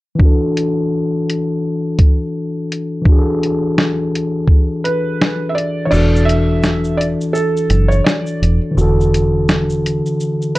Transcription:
0.15 tine electric piano E3 D4
0.20 tine electric piano F#4, kick
0.25 tine electric piano A4
0.57 closed hi-hat
1.30 closed hi-hat
1.99 kick, closed hi-hat
2.72 closed hi-hat
3.02 tine electric piano E3 D4, kick
3.09 tine electric piano F#4 G#4
3.19 tine electric piano A4
3.43 closed hi-hat
3.78 snare
4.15 closed hi-hat
4.48 kick
4.84 felt piano B4, closed hi-hat
5.22 snare
5.49 felt piano E5
5.55 felt piano D5, closed hi-hat
5.85 tine electric piano E3, felt piano C#5
5.90 fingered electric bass E1, tine electric piano D4 F#4, felt piano D5, crash, shaker
5.97 tine electric piano A4
6.16 shaker
6.25 felt piano E5
6.29 closed hi-hat, shaker
6.63 snare, shaker
6.84 shaker
6.97 felt piano D5, closed hi-hat, shaker
7.21 shaker
7.33 felt piano A4, shaker
7.57 shaker
7.70 fingered electric bass F#1, closed hi-hat, shaker
7.88 felt piano C#5, shaker
8.04 felt piano D5, snare, shaker
8.26 shaker
8.42 fingered electric bass E1, closed hi-hat, shaker
8.71 tine electric piano D3 E3
8.77 fingered electric bass E1, tine electric piano F#4, shaker
8.81 tine electric piano A4
9.01 shaker
9.14 closed hi-hat, shaker
9.49 snare, shaker
9.70 shaker
9.86 closed hi-hat, shaker
10.06 shaker
10.20 shaker
10.42 shaker
10.55 felt piano B4, closed hi-hat, shaker

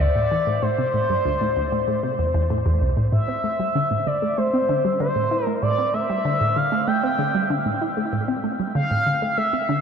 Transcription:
0.00 synth arpeggio sound D2, analog synth lead D5
0.16 synth arpeggio sound A2
0.31 synth arpeggio sound E3
0.47 synth arpeggio sound A2
0.62 synth arpeggio sound A2, analog synth lead C5
0.78 synth arpeggio sound C3
0.94 synth arpeggio sound A2
1.10 synth arpeggio sound G2
1.25 synth arpeggio sound D2
1.41 synth arpeggio sound A2
1.57 synth arpeggio sound D2
1.72 synth arpeggio sound A2
1.88 synth arpeggio sound A2
2.03 synth arpeggio sound C3
2.19 synth arpeggio sound E2
2.34 synth arpeggio sound E2
2.50 synth arpeggio sound A2
2.66 synth arpeggio sound E2
2.81 synth arpeggio sound C2
2.97 synth arpeggio sound A2
3.12 synth arpeggio sound A2, analog synth lead E5
3.28 synth arpeggio sound C4
3.44 synth arpeggio sound A3
3.60 synth arpeggio sound G3
3.75 synth arpeggio sound D3
3.91 synth arpeggio sound A2
4.07 synth arpeggio sound D3, analog synth lead D5
4.22 synth arpeggio sound A3
4.37 synth arpeggio sound A3, analog synth lead C5
4.54 synth arpeggio sound C4
4.69 synth arpeggio sound D3
4.85 synth arpeggio sound G3
5.00 synth arpeggio sound D3, analog synth lead C5
5.16 synth arpeggio sound A2
5.31 synth arpeggio sound E4
5.45 synth arpeggio sound A3, analog synth lead A#4
5.62 synth arpeggio sound A2, analog synth lead D5
5.78 synth arpeggio sound C4
5.94 synth arpeggio sound A3, analog synth lead E5
6.10 synth arpeggio sound G3
6.25 synth arpeggio sound D3
6.41 synth arpeggio sound A2
6.56 synth arpeggio sound D3, analog synth lead F5
6.72 synth arpeggio sound A3
6.87 synth arpeggio sound A3, analog synth lead G5
7.03 synth arpeggio sound C4
7.19 synth arpeggio sound D3
7.35 synth arpeggio sound G3
7.50 synth arpeggio sound D3
7.66 synth arpeggio sound A2
7.81 synth arpeggio sound E4
7.97 synth arpeggio sound A3
8.13 synth arpeggio sound A2
8.28 synth arpeggio sound C4
8.44 synth arpeggio sound A3
8.60 synth arpeggio sound G3
8.75 synth arpeggio sound D3, analog synth lead F5
8.91 synth arpeggio sound A2
9.06 synth arpeggio sound D3
9.22 synth arpeggio sound A3
9.37 synth arpeggio sound A3, analog synth lead E5
9.53 synth arpeggio sound C4
9.69 synth arpeggio sound D3

